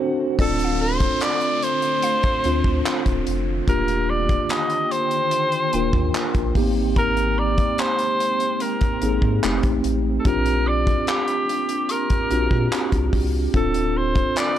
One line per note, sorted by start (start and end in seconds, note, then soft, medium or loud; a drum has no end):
0.00 0.37 D3 medium
0.00 0.37 A3 medium
0.00 0.37 C4 medium
0.00 0.39 C4 loud
0.00 0.39 D4 medium
0.00 0.35 F#4 medium
0.00 0.37 F#4 medium
0.00 0.41 F#4 medium
0.00 0.41 A4 loud
0.00 0.27 C5 medium
0.39 1.09 D1 loud
0.39 3.64 D3 medium
0.39 3.64 A3 medium
0.39 1.50 C4 medium
0.39 3.64 C4 medium
0.39 1.51 D4 medium
0.39 3.65 F4 medium
0.39 1.51 F4 medium
0.39 1.51 A4 medium
0.39 0.83 A4 loud
0.39 2.75 D5 medium
0.39 kick loud
0.39 closed hi-hat medium
0.39 downlifter medium
0.59 closed hi-hat medium
0.64 2.02 F5 medium
0.82 1.24 C5 loud
1.00 kick medium
1.00 closed hi-hat medium
1.21 1.65 D5 loud
1.21 clap loud
1.21 closed hi-hat medium
1.41 closed hi-hat soft
1.63 3.27 C5 loud
1.63 closed hi-hat medium
1.82 closed hi-hat soft
2.02 4.05 F5 medium
2.02 closed hi-hat medium
2.23 kick medium
2.23 closed hi-hat soft
2.44 2.62 D2 medium
2.44 3.28 C4 medium
2.44 3.28 D4 medium
2.44 3.29 F4 medium
2.44 3.29 C5 medium
2.44 closed hi-hat medium
2.64 2.82 D2 loud
2.64 kick loud
2.86 clap loud
2.86 closed hi-hat medium
3.06 3.24 D1 medium
3.06 kick medium
3.06 closed hi-hat medium
3.27 3.62 F1 loud
3.27 closed hi-hat medium
3.68 4.38 D#1 loud
3.68 6.53 D3 medium
3.68 6.53 D#3 medium
3.68 4.79 A#3 medium
3.68 6.53 A#3 medium
3.68 4.80 D4 medium
3.68 4.80 F4 medium
3.68 4.80 G4 medium
3.68 4.11 A#4 loud
3.68 9.39 G5 medium
3.68 kick loud
3.68 closed hi-hat medium
3.88 closed hi-hat medium
4.10 4.44 D5 loud
4.29 kick medium
4.29 closed hi-hat medium
4.44 4.52 D5 medium
4.49 4.93 D#5 loud
4.49 clap loud
4.49 closed hi-hat medium
4.70 closed hi-hat soft
4.92 6.56 C5 loud
4.92 closed hi-hat medium
5.11 closed hi-hat medium
5.31 closed hi-hat medium
5.52 closed hi-hat soft
5.73 5.91 D#1 medium
5.73 6.54 A#3 medium
5.73 6.56 D4 medium
5.73 6.56 F4 medium
5.73 6.56 A#4 medium
5.73 6.93 G5 medium
5.73 closed hi-hat medium
5.93 6.11 D#2 loud
5.93 kick loud
6.15 clap loud
6.15 closed hi-hat medium
6.35 6.52 A#1 medium
6.35 kick medium
6.35 closed hi-hat medium
6.55 7.60 G#1 loud
6.55 9.40 G#3 medium
6.55 7.87 A#3 medium
6.55 6.62 B3 medium
6.55 10.22 C4 medium
6.55 7.87 D#4 medium
6.55 7.88 G4 loud
6.55 kick medium
6.55 open hi-hat medium
6.62 7.90 C4 medium
6.96 7.40 A#4 loud
6.96 7.37 A#5 medium
6.96 kick loud
6.96 closed hi-hat medium
7.17 closed hi-hat medium
7.38 7.82 D5 loud
7.38 9.74 A#5 medium
7.58 kick loud
7.58 closed hi-hat medium
7.78 8.63 C5 loud
7.78 clap loud
7.78 closed hi-hat medium
7.99 closed hi-hat soft
8.20 closed hi-hat medium
8.40 closed hi-hat medium
8.60 9.43 A#4 medium
8.60 closed hi-hat medium
8.81 kick loud
8.81 closed hi-hat soft
9.02 9.20 G#1 medium
9.02 9.43 A#3 medium
9.02 9.43 C4 medium
9.02 9.43 D#4 medium
9.02 9.44 G#4 medium
9.02 closed hi-hat medium
9.22 9.40 G#2 loud
9.22 kick loud
9.43 9.61 F1 loud
9.43 10.09 A3 medium
9.43 10.09 C4 medium
9.43 10.09 D#4 medium
9.43 10.10 G4 medium
9.43 clap loud
9.43 closed hi-hat medium
9.63 9.81 A1 medium
9.63 kick medium
9.63 closed hi-hat medium
9.84 10.19 A1 loud
9.84 closed hi-hat medium
10.20 10.28 A4 medium
10.25 10.95 A#1 loud
10.25 13.51 A#3 medium
10.25 11.37 C4 medium
10.25 13.51 D4 medium
10.25 11.37 D4 medium
10.25 11.37 F4 medium
10.25 13.51 G4 medium
10.25 11.38 G4 medium
10.25 10.69 A#4 loud
10.25 kick loud
10.25 closed hi-hat medium
10.46 closed hi-hat medium
10.66 11.08 D5 loud
10.66 13.02 D6 medium
10.87 kick loud
10.87 closed hi-hat medium
11.07 11.93 G4 loud
11.07 clap loud
11.07 closed hi-hat medium
11.28 closed hi-hat soft
11.49 closed hi-hat medium
11.69 closed hi-hat medium
11.89 13.14 A#4 loud
11.89 13.91 C6 medium
11.89 closed hi-hat medium
12.10 kick loud
12.10 closed hi-hat soft
12.31 12.48 A#1 loud
12.31 13.15 C4 medium
12.31 13.15 D4 medium
12.31 13.15 F4 medium
12.31 12.38 F#4 medium
12.31 closed hi-hat medium
12.39 13.19 G4 medium
12.51 12.69 A#2 loud
12.51 kick loud
12.72 clap loud
12.72 closed hi-hat medium
12.92 13.10 C2 loud
12.92 kick medium
12.92 closed hi-hat medium
13.13 13.48 C2 medium
13.13 kick medium
13.13 open hi-hat medium
13.54 14.24 D1 loud
13.54 14.59 D3 medium
13.54 14.59 A3 medium
13.54 14.59 C4 medium
13.54 14.59 D4 medium
13.54 14.59 F4 loud
13.54 14.59 F4 medium
13.54 14.59 A4 medium
13.54 13.98 A4 loud
13.54 kick loud
13.54 closed hi-hat medium
13.74 closed hi-hat medium
13.97 14.39 C5 loud
14.15 kick medium
14.15 closed hi-hat medium
14.36 14.59 D5 loud
14.36 clap loud
14.36 closed hi-hat medium